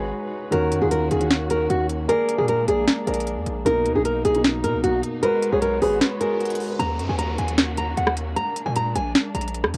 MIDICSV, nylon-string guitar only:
0, 0, Header, 1, 2, 480
1, 0, Start_track
1, 0, Key_signature, -6, "minor"
1, 0, Tempo, 392157
1, 639, Time_signature, 4, 2, 24, 8
1, 11961, End_track
2, 0, Start_track
2, 0, Title_t, "Nylon-string guitar"
2, 0, Program_c, 0, 24
2, 636, Note_on_c, 0, 70, 103
2, 976, Note_off_c, 0, 70, 0
2, 999, Note_on_c, 0, 68, 76
2, 1098, Note_off_c, 0, 68, 0
2, 1117, Note_on_c, 0, 70, 82
2, 1315, Note_off_c, 0, 70, 0
2, 1361, Note_on_c, 0, 68, 70
2, 1558, Note_off_c, 0, 68, 0
2, 1844, Note_on_c, 0, 70, 78
2, 2039, Note_off_c, 0, 70, 0
2, 2081, Note_on_c, 0, 66, 80
2, 2277, Note_off_c, 0, 66, 0
2, 2557, Note_on_c, 0, 70, 104
2, 2896, Note_off_c, 0, 70, 0
2, 2917, Note_on_c, 0, 68, 81
2, 3016, Note_off_c, 0, 68, 0
2, 3047, Note_on_c, 0, 70, 77
2, 3241, Note_off_c, 0, 70, 0
2, 3281, Note_on_c, 0, 68, 93
2, 3478, Note_off_c, 0, 68, 0
2, 3758, Note_on_c, 0, 70, 74
2, 4435, Note_off_c, 0, 70, 0
2, 4477, Note_on_c, 0, 70, 107
2, 4816, Note_off_c, 0, 70, 0
2, 4840, Note_on_c, 0, 68, 72
2, 4938, Note_off_c, 0, 68, 0
2, 4959, Note_on_c, 0, 70, 78
2, 5156, Note_off_c, 0, 70, 0
2, 5201, Note_on_c, 0, 68, 75
2, 5398, Note_off_c, 0, 68, 0
2, 5679, Note_on_c, 0, 70, 85
2, 5877, Note_off_c, 0, 70, 0
2, 5921, Note_on_c, 0, 66, 89
2, 6117, Note_off_c, 0, 66, 0
2, 6397, Note_on_c, 0, 70, 109
2, 6736, Note_off_c, 0, 70, 0
2, 6761, Note_on_c, 0, 68, 73
2, 6859, Note_off_c, 0, 68, 0
2, 6877, Note_on_c, 0, 70, 78
2, 7075, Note_off_c, 0, 70, 0
2, 7122, Note_on_c, 0, 68, 84
2, 7318, Note_off_c, 0, 68, 0
2, 7598, Note_on_c, 0, 70, 72
2, 8275, Note_off_c, 0, 70, 0
2, 8315, Note_on_c, 0, 82, 106
2, 8655, Note_off_c, 0, 82, 0
2, 8679, Note_on_c, 0, 80, 76
2, 8778, Note_off_c, 0, 80, 0
2, 8796, Note_on_c, 0, 82, 81
2, 8995, Note_off_c, 0, 82, 0
2, 9041, Note_on_c, 0, 80, 71
2, 9238, Note_off_c, 0, 80, 0
2, 9524, Note_on_c, 0, 82, 84
2, 9719, Note_off_c, 0, 82, 0
2, 9761, Note_on_c, 0, 78, 84
2, 9958, Note_off_c, 0, 78, 0
2, 10237, Note_on_c, 0, 82, 105
2, 10576, Note_off_c, 0, 82, 0
2, 10596, Note_on_c, 0, 80, 80
2, 10696, Note_off_c, 0, 80, 0
2, 10726, Note_on_c, 0, 82, 81
2, 10921, Note_off_c, 0, 82, 0
2, 10960, Note_on_c, 0, 80, 96
2, 11157, Note_off_c, 0, 80, 0
2, 11438, Note_on_c, 0, 82, 76
2, 11961, Note_off_c, 0, 82, 0
2, 11961, End_track
0, 0, End_of_file